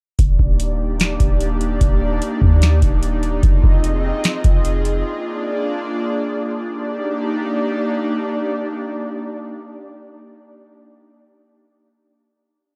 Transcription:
0.19 808-style bass D#1, analog synth pad A#3 D4 D#4 G4 D5, kick, closed hi-hat
0.39 808-style bass D#1, kick
0.60 closed hi-hat
1.00 snare, closed hi-hat
1.20 808-style bass D#1, kick, closed hi-hat
1.40 closed hi-hat
1.61 closed hi-hat
1.81 808-style bass D#1, kick, closed hi-hat
2.22 closed hi-hat
2.42 808-style bass D#2, kick
2.62 snare, closed hi-hat
2.82 808-style bass D#1, kick, closed hi-hat
3.03 closed hi-hat
3.23 closed hi-hat
3.43 808-style bass F1, analog synth pad C4 F4 G#4 D#5, kick, closed hi-hat
3.64 808-style bass F1, kick
3.84 closed hi-hat
4.24 snare, closed hi-hat
4.44 808-style bass F1, kick, closed hi-hat
4.65 closed hi-hat
4.85 closed hi-hat
5.05 analog synth pad A#3 D4 D5
6.68 analog synth pad A#3 D4 D#4 G4 D5

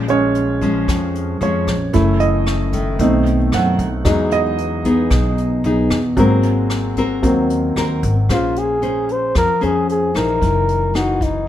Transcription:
Already playing: upright bass A#1, nylon-string guitar A#2 F3 G#3 C#4, grand piano C5
0.08 grand piano G#3 C#4 C#5, closed hi-hat
0.35 closed hi-hat
0.61 nylon-string guitar F3 G#3 C#4, kick, closed hi-hat
0.88 upright bass F2, nylon-string guitar F2, kick, cross-stick, closed hi-hat
1.15 closed hi-hat
1.41 upright bass F2, nylon-string guitar F3 G#3 C#4, grand piano C#5, closed hi-hat
1.67 upright bass A#1, kick, cross-stick, closed hi-hat
1.93 upright bass F#1, nylon-string guitar F#2 E3 A3 C#4, grand piano A3 E4, kick, closed hi-hat
2.20 grand piano D#5, closed hi-hat
2.47 cross-stick, closed hi-hat
2.73 nylon-string guitar D#3 A3, kick, closed hi-hat
2.99 upright bass B1, nylon-string guitar B2, grand piano A3 C4 D#4, kick, closed hi-hat
3.26 closed hi-hat
3.52 upright bass F#2, nylon-string guitar D#3 A3 C4, grand piano F#5, cross-stick, closed hi-hat
3.79 upright bass B1, kick, closed hi-hat
4.04 upright bass E2, nylon-string guitar E3 B3 D#4 G#4, grand piano F#3 G#3 D#4, kick, cross-stick, closed hi-hat
4.31 grand piano D#5, closed hi-hat
4.58 closed hi-hat
4.84 nylon-string guitar B3 D#4 G#4, kick, closed hi-hat
5.10 upright bass B1, nylon-string guitar B2, kick, cross-stick, closed hi-hat
5.38 closed hi-hat
5.64 upright bass B1, nylon-string guitar B3 D#4 G#4, closed hi-hat
5.90 upright bass E2, kick, cross-stick, closed hi-hat
6.17 upright bass G#1, grand piano F#3 A#3 C4, nylon-string guitar G#3 C4 F#4 A#4, kick, closed hi-hat
6.43 closed hi-hat
6.70 cross-stick, closed hi-hat
6.97 nylon-string guitar C4 F#4 A#4, kick, closed hi-hat
7.22 upright bass D#2, nylon-string guitar D#3, grand piano F#3 A#3 C4, kick, closed hi-hat
7.50 closed hi-hat
7.76 upright bass D#2, nylon-string guitar C4 F#4 A#4, cross-stick, closed hi-hat
8.03 upright bass G#1, kick, closed hi-hat
8.29 upright bass A#1, nylon-string guitar A#3 C#4 G#4 C5, flugelhorn F4, kick, cross-stick, closed hi-hat
8.56 flugelhorn G#4, closed hi-hat
8.82 nylon-string guitar C#4 G#4 C5, closed hi-hat
9.09 flugelhorn C5, closed hi-hat
9.35 upright bass F2, nylon-string guitar F3, flugelhorn A#4, kick, cross-stick, closed hi-hat
9.61 upright bass F2, nylon-string guitar C#4 G#4 C5, flugelhorn G#4, closed hi-hat
9.89 flugelhorn G#4, closed hi-hat
10.14 upright bass A#1, nylon-string guitar E3 A#3 D#4, flugelhorn A#4, cross-stick, closed hi-hat
10.40 upright bass F#1, nylon-string guitar F#2, kick, closed hi-hat
10.69 closed hi-hat
10.94 nylon-string guitar E3 A#3 D#4, flugelhorn F#4, cross-stick, closed hi-hat
11.21 flugelhorn D#4, kick, closed hi-hat

